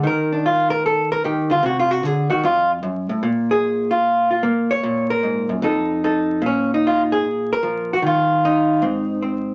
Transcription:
hollow-body jazz guitar
0.03 D#3 A#4
0.32 D4
0.46 F4
0.70 A#4
0.86 A4
1.12 A#4
1.24 D#3 G4
1.50 D3 F4
1.63 C3 F#4
1.79 F4
1.91 F#4
2.03 D3 G#4
2.30 D#3 F#4
2.43 F2 F4
2.83 F#2
3.09 A2
3.23 A#2
3.51 G#4
3.91 F4
4.31 F4
4.43 A#3
4.71 C#5
4.83 A#2
5.10 A#4
5.23 G#2
5.49 F#2
5.62 F2 D#4 A4
6.04 D#4 A4
6.42 A#2
6.46 C#4
6.74 D#4
6.87 F4
7.12 G#4
7.53 A#4
7.63 F3
7.93 F#4
8.02 D#3
8.06 F4
8.45 D#4
8.82 G#2 C4
9.22 C4

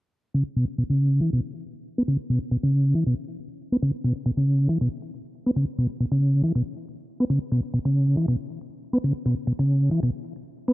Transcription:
tonewheel organ
0.34 C#3
0.56 B2
0.78 B2
0.90 C#3
1.21 E3
1.33 B2
1.98 B3
2.08 C#3
2.30 B2
2.51 B2
2.63 C#3
2.95 E3
3.06 B2
3.72 B3
3.83 C#3
4.04 B2
4.26 B2
4.37 C#3
4.69 E3
4.81 B2
5.46 B3
5.56 C#3
5.78 B2
6.00 B2
6.12 C#3
6.44 E3
6.55 B2
7.20 B3
7.30 C#3
7.52 B2
7.74 B2
7.85 C#3
8.17 E3
8.28 B2
8.93 B3
9.04 C#3
9.26 B2
9.47 B2
9.59 C#3
9.91 E3
10.03 B2
10.68 B3

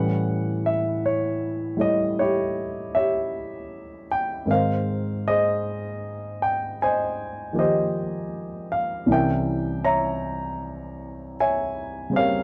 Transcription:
grand piano
Already playing: A2 E3 G3 C#4 B4 C#5 F#5
0.66 E5
1.06 C#5
1.77 G3 A3 E4 C#5
1.81 D#5
2.19 E4 G4 C#5
2.95 G4 C#5 E5
4.11 G5
4.46 G#2 D#3 G#3 C4 A#4
4.51 A#4 C5 F5
5.28 G#4 C5 D#5
6.42 G5
6.82 C5 D#5 G#5
7.53 D#3 F3 A#3 G4
7.59 G4 C5 D#5
8.72 F5
9.06 C2 C3 E3 C#4
9.11 A#4 E5 G5
9.85 C#5 E5 A#5
11.40 C#5 E5 G#5
12.10 C#3 G3 C4 G4
12.16 A#4 C#5 F5

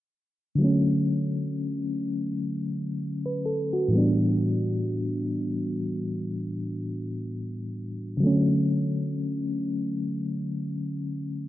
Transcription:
fm electric piano
0.55 D3 F#3
0.61 A3 C#4
3.26 B4
3.46 A4
3.73 F#4
3.88 A2 E3
3.93 G3 B3
3.98 D4
8.17 C#3 F#3
8.23 D3 A3 C#4

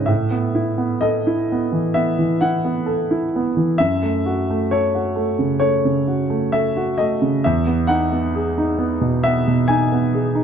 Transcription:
grand piano
Already playing: G#2 C#4 E4 G#4 B4 D#5
0.06 A2 E5
0.31 B3
0.55 E4
0.78 B3
1.01 A4 D#5
1.27 E4
1.52 B3
1.72 E3
1.94 B3 E5
2.19 E3
2.41 E4 F#5
2.65 B3
2.86 A4
3.11 E4
3.36 B3
3.57 E3
3.78 F#2 E5
4.02 A3
4.26 F#4
4.50 A3
4.71 A4 C#5
4.95 F#4
5.16 A3
5.39 C#3
5.60 A3 C#5
5.85 C#3
6.08 F#4
6.30 A3
6.52 A4 E5
6.77 F#4
6.98 A3 D#5
7.22 C#3
7.44 E2 E5
7.67 B3
7.87 D#4 F#5
8.12 B3
8.35 G#4
8.58 D#4
8.79 B3
9.01 B2
9.23 B3 E5
9.48 B2
9.68 D#4 G#5
9.92 B3
10.14 G#4
10.35 D#4

